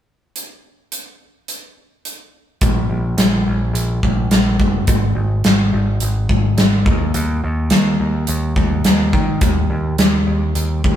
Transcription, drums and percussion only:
0.36 closed hi-hat medium
0.92 closed hi-hat medium
1.48 closed hi-hat soft
2.05 closed hi-hat soft
2.61 kick medium
2.61 closed hi-hat medium
3.18 snare loud
3.18 closed hi-hat medium
3.75 closed hi-hat medium
4.03 kick medium
4.31 snare medium
4.31 closed hi-hat medium
4.60 kick medium
4.87 kick medium
4.87 closed hi-hat medium
5.44 snare medium
5.44 closed hi-hat medium
6.00 closed hi-hat soft
6.29 kick medium
6.58 snare medium
6.58 closed hi-hat soft
6.86 kick medium
7.14 closed hi-hat soft
7.70 snare loud
7.70 closed hi-hat medium
8.27 closed hi-hat medium
8.56 kick medium
8.84 snare medium
8.84 closed hi-hat medium
9.13 kick medium
9.41 kick medium
9.41 closed hi-hat medium
9.98 snare loud
9.98 closed hi-hat medium
10.55 closed hi-hat soft
10.84 kick medium

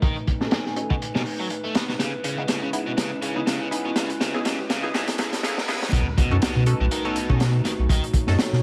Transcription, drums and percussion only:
0.02 kick loud
0.02 closed hi-hat medium
0.16 closed hi-hat soft
0.27 kick medium
0.27 closed hi-hat medium
0.41 snare soft
0.51 snare loud
0.51 closed hi-hat medium
0.66 snare soft
0.76 closed hi-hat medium
0.90 kick loud
1.02 closed hi-hat medium
1.15 snare soft
1.26 open hi-hat medium
1.50 closed hi-hat medium
1.75 snare loud
1.75 closed hi-hat medium
1.89 snare soft
1.99 snare soft
1.99 closed hi-hat medium
2.24 closed hi-hat medium
2.48 snare medium
2.48 closed hi-hat medium
2.73 closed hi-hat medium
2.98 snare medium
2.98 closed hi-hat medium
3.22 closed hi-hat medium
3.47 snare medium
3.47 closed hi-hat medium
3.72 closed hi-hat medium
3.96 snare medium
3.96 closed hi-hat medium
4.10 closed hi-hat soft
4.21 snare medium
4.21 closed hi-hat medium
4.45 snare medium
4.45 closed hi-hat medium
4.70 snare medium
4.70 closed hi-hat medium
4.94 snare medium
4.94 closed hi-hat medium
5.07 snare medium
5.07 closed hi-hat medium
5.18 snare loud
5.18 closed hi-hat medium
5.33 snare medium
5.33 closed hi-hat medium
5.43 snare loud
5.43 closed hi-hat medium
5.58 snare loud
5.68 snare loud
5.68 closed hi-hat medium
5.82 snare loud
5.92 kick loud
5.92 closed hi-hat loud
6.18 kick loud
6.18 closed hi-hat medium
6.42 snare loud
6.42 closed hi-hat loud
6.66 closed hi-hat medium
6.91 closed hi-hat medium
7.16 closed hi-hat medium
7.30 kick loud
7.40 snare loud
7.40 closed hi-hat medium
7.65 snare soft
7.65 closed hi-hat medium
7.89 kick loud
7.89 closed hi-hat medium
8.04 closed hi-hat soft
8.14 kick loud
8.14 closed hi-hat medium
8.27 snare soft
8.39 snare loud
8.39 closed hi-hat medium
8.53 snare soft

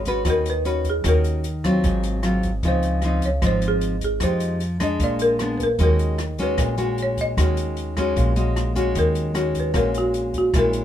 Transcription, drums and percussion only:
0.05 kick soft
0.05 closed hi-hat soft
0.25 kick medium
0.25 cross-stick medium
0.25 closed hi-hat medium
0.46 closed hi-hat soft
0.65 closed hi-hat soft
0.85 kick soft
0.85 closed hi-hat soft
1.04 kick medium
1.04 cross-stick medium
1.04 closed hi-hat medium
1.24 closed hi-hat soft
1.44 closed hi-hat soft
1.64 kick soft
1.64 cross-stick medium
1.64 closed hi-hat soft
1.84 kick medium
1.84 closed hi-hat soft
2.03 closed hi-hat soft
2.23 cross-stick medium
2.23 closed hi-hat soft
2.43 kick soft
2.43 closed hi-hat soft
2.63 kick medium
2.63 closed hi-hat soft
2.83 closed hi-hat soft
3.02 cross-stick soft
3.02 closed hi-hat soft
3.22 kick soft
3.22 closed hi-hat soft
3.42 kick soft
3.42 cross-stick medium
3.42 closed hi-hat medium
3.62 closed hi-hat soft
3.81 closed hi-hat soft
4.01 kick soft
4.01 closed hi-hat soft
4.20 kick medium
4.20 cross-stick medium
4.20 closed hi-hat medium
4.40 closed hi-hat soft
4.60 closed hi-hat soft
4.80 kick soft
4.80 cross-stick medium
4.80 closed hi-hat soft
5.00 kick medium
5.00 closed hi-hat soft
5.19 closed hi-hat soft
5.39 cross-stick medium
5.39 closed hi-hat soft
5.59 kick soft
5.59 closed hi-hat soft
5.79 kick medium
5.79 closed hi-hat medium
5.99 closed hi-hat soft
6.18 cross-stick medium
6.18 closed hi-hat soft
6.38 kick soft
6.38 closed hi-hat soft
6.58 kick medium
6.58 cross-stick medium
6.58 closed hi-hat medium
6.78 closed hi-hat soft
6.98 closed hi-hat soft
7.17 kick soft
7.17 closed hi-hat soft
7.37 kick medium
7.37 cross-stick medium
7.37 closed hi-hat medium
7.57 closed hi-hat soft
7.77 closed hi-hat soft
7.97 kick soft
7.97 cross-stick soft
7.97 closed hi-hat soft
8.16 kick soft
8.16 closed hi-hat soft
8.36 closed hi-hat soft
8.56 cross-stick medium
8.56 closed hi-hat soft
8.76 kick soft
8.76 closed hi-hat soft
8.95 kick medium
8.95 closed hi-hat medium
9.15 closed hi-hat soft
9.35 cross-stick medium
9.35 closed hi-hat soft
9.55 kick soft
9.55 closed hi-hat soft
9.74 kick medium
9.74 cross-stick medium
9.74 closed hi-hat soft
9.94 closed hi-hat soft
10.14 closed hi-hat soft
10.34 kick soft
10.34 closed hi-hat soft
10.54 kick medium
10.54 cross-stick medium
10.54 closed hi-hat medium
10.73 closed hi-hat soft

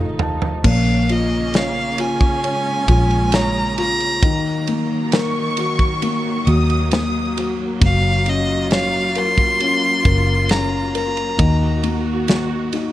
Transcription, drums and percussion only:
0.19 floor tom medium
0.42 floor tom medium
0.64 kick loud
0.64 crash loud
1.09 ride medium
1.54 snare loud
1.54 ride medium
1.98 ride medium
2.21 kick medium
2.44 ride medium
2.88 kick loud
2.88 ride medium
3.11 ride soft
3.32 snare loud
3.32 ride medium
3.78 ride medium
4.00 ride soft
4.22 kick loud
4.22 ride medium
4.67 ride medium
5.12 snare loud
5.12 ride medium
5.57 ride medium
5.79 kick medium
6.02 ride medium
6.47 ride medium
6.70 ride soft
6.91 snare loud
6.91 ride medium
7.37 ride medium
7.81 kick loud
7.81 ride medium
8.26 ride medium
8.71 snare loud
8.71 ride medium
9.15 ride medium
9.38 kick medium
9.60 ride medium
10.05 kick loud
10.05 ride medium
10.49 snare loud
10.49 ride medium
10.95 ride medium
11.17 ride soft
11.39 kick loud
11.39 ride medium
11.83 ride medium
12.28 snare loud
12.28 ride medium
12.73 ride medium

